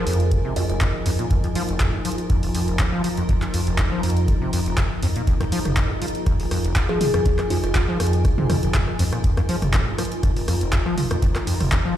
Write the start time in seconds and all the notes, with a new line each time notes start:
Already playing: F3 D#4 F4 G#4 A#4 D#5 G#5
0.07 F2, open hi-hat
0.13 closed hi-hat
0.20 closed hi-hat
0.31 G#2, kick, closed hi-hat
0.45 C3
0.56 F2 D#5, open hi-hat
0.69 F1 D#5, closed hi-hat
0.81 F2, kick, clap, closed hi-hat
1.06 F2, open hi-hat
1.19 A#2, closed hi-hat
1.31 F2 F4, kick, closed hi-hat
1.44 F2, closed hi-hat
1.55 F3, open hi-hat
1.60 A#5
1.69 F1, closed hi-hat
1.80 A#2, kick, clap, closed hi-hat
1.94 F2
2.05 F3, open hi-hat
2.12 closed hi-hat
2.18 closed hi-hat
2.30 F2, kick, closed hi-hat
2.43 F1, open hi-hat
2.55 F2, open hi-hat
2.68 F1, closed hi-hat
2.79 A#2, kick, clap, closed hi-hat
2.93 F3
3.04 F3, open hi-hat
3.17 F2, closed hi-hat
3.29 F2, kick, closed hi-hat
3.42 clap, closed hi-hat
3.54 F2, open hi-hat
3.67 F1, closed hi-hat
3.78 A#2, kick, clap, closed hi-hat
3.92 F3
4.03 F2, open hi-hat
4.10 closed hi-hat
4.17 closed hi-hat
4.28 G#2, kick, closed hi-hat
4.41 C3
4.53 F2, open hi-hat
4.66 F1, closed hi-hat
4.77 F2, kick, clap, closed hi-hat
5.03 F2, open hi-hat
5.16 A#2, closed hi-hat
5.27 F2 G#4, kick, closed hi-hat
5.41 F2, cross-stick, closed hi-hat
5.52 F3, open hi-hat
5.57 G#5
5.65 F1, cross-stick, closed hi-hat, mid tom
5.77 A#2, kick, clap, closed hi-hat
5.90 F2
6.02 F3, open hi-hat
6.08 closed hi-hat
6.15 closed hi-hat
6.26 F2, kick, cross-stick, closed hi-hat
6.40 F1, open hi-hat
6.51 F2, cross-stick, open hi-hat
6.64 F1, closed hi-hat
6.76 A#2, kick, clap, closed hi-hat
6.89 F3 G#4, cross-stick
7.01 F3 G#4, mid tom, open hi-hat
7.14 F2, cross-stick, closed hi-hat
7.26 F2, kick, closed hi-hat
7.39 cross-stick, clap, closed hi-hat
7.50 F2 F4, open hi-hat
7.64 F1, cross-stick, closed hi-hat
7.75 A#2, kick, clap, closed hi-hat
7.88 F3
8.00 F2, cross-stick, open hi-hat
8.07 closed hi-hat
8.13 closed hi-hat
8.25 G#2, kick, cross-stick, closed hi-hat
8.38 C3, mid tom
8.50 F2, cross-stick, mid tom, open hi-hat
8.63 F1, closed hi-hat
8.74 F2, kick, clap, closed hi-hat
8.88 cross-stick
8.99 F2, open hi-hat
9.12 A#2, cross-stick, closed hi-hat
9.24 F2 F4, kick, closed hi-hat
9.37 F2, cross-stick, closed hi-hat
9.49 F3, open hi-hat
9.54 A#5
9.62 F1, cross-stick, closed hi-hat, mid tom
9.73 A#2, kick, clap, closed hi-hat
9.87 F2
9.98 F3, cross-stick, open hi-hat
10.05 closed hi-hat
10.12 closed hi-hat
10.23 F2, kick, cross-stick, closed hi-hat
10.36 F1, open hi-hat
10.48 F2, cross-stick, open hi-hat
10.61 F1, closed hi-hat
10.73 A#2, kick, clap, closed hi-hat
10.86 F3, cross-stick
10.98 F3, mid tom, open hi-hat
11.11 F2, cross-stick, closed hi-hat
11.22 F2, kick, closed hi-hat
11.35 cross-stick, clap, closed hi-hat
11.47 F2, open hi-hat
11.60 F1, cross-stick, mid tom, open hi-hat
11.72 A#2, kick, clap, closed hi-hat
11.85 F3